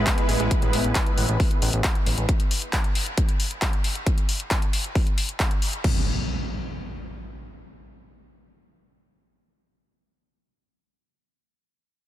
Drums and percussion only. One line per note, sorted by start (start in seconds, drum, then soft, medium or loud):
0.07 kick loud
0.07 clap loud
0.07 closed hi-hat medium
0.18 closed hi-hat medium
0.29 open hi-hat loud
0.40 closed hi-hat medium
0.51 kick loud
0.51 closed hi-hat medium
0.62 closed hi-hat medium
0.73 open hi-hat loud
0.84 closed hi-hat medium
0.95 kick loud
0.95 clap loud
0.95 closed hi-hat medium
1.06 closed hi-hat soft
1.18 open hi-hat loud
1.29 closed hi-hat soft
1.40 kick loud
1.40 open hi-hat medium
1.51 closed hi-hat medium
1.62 open hi-hat loud
1.73 closed hi-hat medium
1.84 kick loud
1.84 clap loud
1.84 closed hi-hat medium
1.95 closed hi-hat medium
2.06 open hi-hat loud
2.18 closed hi-hat medium
2.29 kick loud
2.29 closed hi-hat medium
2.40 closed hi-hat medium
2.51 open hi-hat loud
2.62 closed hi-hat soft
2.73 kick loud
2.73 clap loud
2.73 closed hi-hat medium
2.84 closed hi-hat soft
2.95 open hi-hat loud
3.06 closed hi-hat medium
3.18 kick loud
3.18 closed hi-hat medium
3.29 closed hi-hat medium
3.40 open hi-hat loud
3.51 closed hi-hat medium
3.62 kick loud
3.62 clap loud
3.62 closed hi-hat medium
3.73 closed hi-hat soft
3.84 open hi-hat loud
3.95 closed hi-hat medium
4.07 kick loud
4.07 closed hi-hat medium
4.18 closed hi-hat soft
4.29 open hi-hat loud
4.40 closed hi-hat soft
4.51 kick loud
4.51 clap loud
4.51 closed hi-hat medium
4.62 closed hi-hat soft
4.73 open hi-hat loud
4.84 closed hi-hat soft
4.95 kick loud
4.95 open hi-hat medium
5.07 closed hi-hat soft
5.18 open hi-hat medium
5.29 closed hi-hat soft
5.40 kick loud
5.40 clap loud
5.40 closed hi-hat medium
5.51 closed hi-hat soft
5.62 open hi-hat medium
5.73 closed hi-hat soft
5.84 kick loud
5.84 crash medium